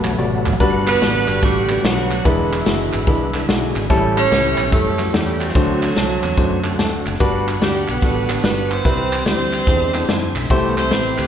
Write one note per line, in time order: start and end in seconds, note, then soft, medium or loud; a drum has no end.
0.00 0.56 F#3 medium
0.00 0.10 A3 medium
0.00 0.56 A3 medium
0.00 0.57 B3 medium
0.00 0.10 F#4 medium
0.00 0.10 G4 medium
0.00 0.10 B4 loud
0.04 0.17 B1 medium
0.04 clap loud
0.04 high tom medium
0.12 high tom medium
0.18 0.54 A1 medium
0.18 0.51 A3 medium
0.18 0.51 F#4 medium
0.18 0.51 G4 medium
0.18 0.51 D5 medium
0.18 mid tom medium
0.46 clap medium
0.46 floor tom medium
0.53 floor tom medium
0.60 0.95 G1 medium
0.60 1.24 G2 medium
0.60 2.22 D3 medium
0.60 0.93 G3 loud
0.60 2.22 B3 medium
0.60 0.93 D4 loud
0.60 0.67 F4 medium
0.60 0.93 F#4 loud
0.60 0.93 B4 loud
0.60 kick loud
0.60 closed hi-hat medium
0.65 2.25 F#5 medium
0.87 1.29 B3 loud
0.87 1.43 D4 medium
0.87 1.66 F#4 medium
0.87 1.40 B4 loud
0.87 clap loud
0.87 closed hi-hat medium
1.01 1.25 A1 medium
1.01 1.34 G3 medium
1.01 1.34 D4 medium
1.01 1.34 F#4 medium
1.01 1.27 A4 medium
1.01 1.34 D5 medium
1.01 snare loud
1.01 closed hi-hat medium
1.28 1.41 G1 medium
1.28 1.85 G3 loud
1.28 1.42 B3 medium
1.28 1.42 G4 medium
1.28 clap medium
1.28 closed hi-hat medium
1.42 1.78 A1 medium
1.42 1.61 G3 medium
1.42 2.08 A3 medium
1.42 1.84 B3 medium
1.42 1.61 D4 medium
1.42 1.84 D4 medium
1.42 1.61 F#4 medium
1.42 2.08 F#4 medium
1.42 1.85 G4 medium
1.42 1.61 A4 medium
1.42 kick loud
1.42 closed hi-hat medium
1.69 1.80 G3 medium
1.69 1.80 D4 medium
1.69 1.80 F#4 medium
1.69 1.80 B4 medium
1.69 clap loud
1.69 closed hi-hat medium
1.83 2.19 B1 medium
1.83 2.26 F#3 medium
1.83 2.17 G3 medium
1.83 2.23 B3 medium
1.83 2.17 D4 medium
1.83 2.23 D4 medium
1.83 2.17 F#4 medium
1.83 2.26 F#4 medium
1.83 2.17 B4 medium
1.83 snare loud
1.83 closed hi-hat medium
2.11 clap medium
2.11 closed hi-hat medium
2.24 2.60 E1 medium
2.24 3.87 D3 medium
2.24 3.75 E3 medium
2.24 2.89 E3 medium
2.24 2.58 G#3 medium
2.24 3.87 G#3 medium
2.24 3.72 G#3 medium
2.24 3.87 B3 medium
2.24 3.72 B3 medium
2.24 2.58 D4 medium
2.24 2.58 E4 medium
2.24 3.87 E4 medium
2.24 3.76 E4 medium
2.24 2.58 B4 loud
2.24 kick loud
2.24 closed hi-hat medium
2.53 clap loud
2.53 closed hi-hat medium
2.66 2.90 F#1 medium
2.66 2.99 G#3 medium
2.66 2.99 D4 medium
2.66 2.99 E4 medium
2.66 2.99 F#4 medium
2.66 snare loud
2.66 closed hi-hat medium
2.93 3.06 G#1 medium
2.93 clap loud
2.93 closed hi-hat medium
3.07 3.43 C2 medium
3.07 3.26 G#3 medium
3.07 3.26 D4 medium
3.07 3.26 E4 medium
3.07 3.26 B4 loud
3.07 kick loud
3.07 closed hi-hat medium
3.34 3.44 G#3 medium
3.34 3.44 D4 medium
3.34 3.44 E4 medium
3.34 3.44 B4 medium
3.34 3.48 E5 medium
3.34 snare soft
3.34 clap loud
3.34 closed hi-hat medium
3.48 3.72 B1 medium
3.48 3.81 G#3 medium
3.48 3.81 D4 medium
3.48 3.81 E4 medium
3.48 3.81 F#4 medium
3.48 3.87 G#5 medium
3.48 snare loud
3.48 closed hi-hat medium
3.76 3.88 G#1 medium
3.76 clap medium
3.76 closed hi-hat medium
3.90 4.25 A1 medium
3.90 4.54 A2 medium
3.90 5.52 E3 medium
3.90 4.23 G3 loud
3.90 5.52 A3 medium
3.90 4.23 C#4 loud
3.90 5.52 C#4 medium
3.90 4.23 E4 loud
3.90 5.52 G4 medium
3.90 4.23 A4 loud
3.90 kick loud
3.90 closed hi-hat medium
4.17 4.69 C#4 loud
4.17 4.72 E4 medium
4.17 4.96 G4 medium
4.17 4.69 C#5 loud
4.17 clap loud
4.17 closed hi-hat medium
4.31 4.54 C#2 medium
4.31 4.64 G3 medium
4.31 4.64 C#4 medium
4.31 4.64 E4 medium
4.31 4.64 B4 medium
4.31 snare loud
4.31 closed hi-hat medium
4.58 4.71 B1 medium
4.58 clap loud
4.58 closed hi-hat medium
4.72 5.08 F#2 medium
4.72 4.91 G3 medium
4.72 5.16 A3 medium
4.72 4.91 C#4 medium
4.72 5.51 C#4 medium
4.72 4.91 E4 medium
4.72 5.51 E4 medium
4.72 5.14 A4 loud
4.72 4.91 A4 medium
4.72 kick loud
4.72 closed hi-hat medium
4.99 5.10 G3 medium
4.99 5.10 C#4 soft
4.99 5.10 E4 medium
4.99 5.10 F#4 medium
4.99 snare soft
4.99 clap loud
4.99 closed hi-hat medium
5.14 5.49 E2 medium
5.14 5.47 G3 medium
5.14 5.52 G3 medium
5.14 5.47 C#4 medium
5.14 5.47 E4 medium
5.14 5.41 G4 medium
5.14 5.47 A4 medium
5.14 snare loud
5.14 closed hi-hat medium
5.41 7.02 A3 medium
5.41 7.02 C4 medium
5.41 7.06 F#4 medium
5.41 clap medium
5.41 closed hi-hat medium
5.48 5.56 F3 medium
5.48 snare soft
5.54 5.90 D2 medium
5.54 7.17 D3 medium
5.54 6.20 D3 medium
5.54 7.06 F#3 medium
5.54 5.88 A3 medium
5.54 7.17 A3 medium
5.54 7.17 C4 medium
5.54 5.88 D4 medium
5.54 7.17 F#4 medium
5.54 5.88 F#4 medium
5.54 5.88 C5 loud
5.54 kick loud
5.54 closed hi-hat medium
5.83 clap loud
5.83 closed hi-hat medium
5.96 6.19 C2 medium
5.96 6.29 A3 medium
5.96 6.29 D4 medium
5.96 6.29 F#4 medium
5.96 6.29 A4 medium
5.96 snare loud
5.96 closed hi-hat medium
6.23 6.36 E2 medium
6.23 clap medium
6.23 closed hi-hat medium
6.37 6.73 F#2 medium
6.37 6.56 A3 medium
6.37 6.56 D4 medium
6.37 6.57 F#4 medium
6.37 6.57 C5 medium
6.37 kick loud
6.37 closed hi-hat medium
6.64 6.75 A3 medium
6.64 6.75 D4 medium
6.64 6.75 F#4 medium
6.64 6.75 A4 medium
6.64 clap loud
6.64 closed hi-hat medium
6.79 7.02 D2 medium
6.79 7.12 A3 medium
6.79 7.12 D4 medium
6.79 7.12 F#4 medium
6.79 7.12 A4 medium
6.79 snare loud
6.79 closed hi-hat medium
7.06 7.18 F#1 medium
7.06 clap medium
7.06 closed hi-hat medium
7.13 snare soft
7.20 7.56 G1 medium
7.20 7.85 G2 medium
7.20 8.82 D3 medium
7.20 8.82 G3 medium
7.20 7.53 G3 loud
7.20 7.27 A3 soft
7.20 7.53 D4 loud
7.20 7.53 F#4 loud
7.20 7.53 B4 loud
7.20 8.82 F#5 medium
7.20 kick loud
7.20 closed hi-hat medium
7.25 8.85 B3 medium
7.48 clap loud
7.48 closed hi-hat medium
7.61 7.84 D2 medium
7.61 7.94 G3 medium
7.61 7.90 G3 medium
7.61 8.41 B3 medium
7.61 7.94 D4 medium
7.61 8.03 D4 medium
7.61 7.94 F#4 medium
7.61 8.00 G4 medium
7.61 7.94 D5 medium
7.61 snare loud
7.61 closed hi-hat medium
7.88 8.01 B1 medium
7.88 8.44 B3 loud
7.88 clap medium
7.88 closed hi-hat medium
8.02 8.38 A1 medium
8.02 8.22 G3 medium
8.02 8.22 D4 medium
8.02 8.82 D4 medium
8.02 8.22 F#4 medium
8.02 8.82 F#4 medium
8.02 8.22 A4 medium
8.02 8.43 B4 loud
8.02 kick medium
8.02 closed hi-hat medium
8.29 8.40 G3 medium
8.29 8.40 D4 medium
8.29 8.40 F#4 soft
8.29 8.40 A4 medium
8.29 snare soft
8.29 clap loud
8.29 closed hi-hat medium
8.44 8.79 G1 medium
8.44 8.77 G3 medium
8.44 8.87 B3 medium
8.44 8.77 D4 medium
8.44 8.77 F#4 medium
8.44 8.77 B4 medium
8.44 8.70 B4 loud
8.44 snare loud
8.44 closed hi-hat medium
8.71 9.25 E4 medium
8.71 9.25 G4 medium
8.71 9.25 C5 loud
8.71 clap medium
8.71 closed hi-hat medium
8.85 9.20 C2 medium
8.85 9.49 C3 medium
8.85 9.66 E3 medium
8.85 9.18 G3 medium
8.85 9.66 G3 medium
8.85 9.18 C4 medium
8.85 9.66 C4 medium
8.85 9.26 C4 loud
8.85 9.18 E4 medium
8.85 8.92 F#4 medium
8.85 9.18 B4 loud
8.85 kick loud
8.85 closed hi-hat medium
8.90 9.69 G4 medium
9.13 clap loud
9.13 closed hi-hat medium
9.26 9.61 D2 medium
9.26 9.59 G3 medium
9.26 9.59 C4 medium
9.26 10.32 C4 loud
9.26 9.59 E4 medium
9.26 10.32 E4 medium
9.26 10.32 G4 medium
9.26 10.32 C5 loud
9.26 9.59 D5 medium
9.26 snare loud
9.26 closed hi-hat medium
9.53 clap medium
9.53 closed hi-hat medium
9.67 10.03 E2 medium
9.67 10.49 D3 medium
9.67 10.32 E3 medium
9.67 9.87 G#3 medium
9.67 10.49 G#3 medium
9.67 10.49 C4 medium
9.67 9.87 D4 medium
9.67 10.49 E4 medium
9.67 9.87 E4 medium
9.67 9.87 C5 medium
9.67 kick loud
9.67 closed hi-hat medium
9.94 10.05 G#3 medium
9.94 10.05 D4 medium
9.94 10.05 E4 medium
9.94 10.05 C5 medium
9.94 snare soft
9.94 clap medium
9.94 closed hi-hat medium
10.09 10.32 F#2 medium
10.09 10.42 G#3 medium
10.09 10.42 D4 medium
10.09 10.42 E4 medium
10.09 10.42 C5 medium
10.09 10.34 G#5 medium
10.09 snare loud
10.09 closed hi-hat medium
10.35 10.48 B1 medium
10.35 10.49 E5 medium
10.35 clap medium
10.35 closed hi-hat medium
10.43 snare soft
10.50 10.92 C2 medium
10.50 11.15 C3 medium
10.50 11.27 E3 medium
10.50 10.83 A3 loud
10.50 11.27 A3 medium
10.50 10.57 B3 medium
10.50 10.83 E4 medium
10.50 11.27 G4 medium
10.50 10.83 G4 loud
10.50 10.83 C5 loud
10.50 kick loud
10.50 closed hi-hat medium
10.55 11.27 C4 medium
10.68 10.78 B3 medium
10.77 11.27 C4 loud
10.77 11.27 E4 medium
10.77 11.27 G4 medium
10.77 11.16 C5 loud
10.77 clap loud
10.77 closed hi-hat medium
10.91 11.15 A1 medium
10.91 11.25 A3 medium
10.91 11.25 E4 medium
10.91 11.25 G4 medium
10.91 11.25 B4 medium
10.91 snare loud
10.91 closed hi-hat loud
11.18 11.27 D2 medium
11.18 11.27 B4 medium
11.18 clap medium
11.18 closed hi-hat medium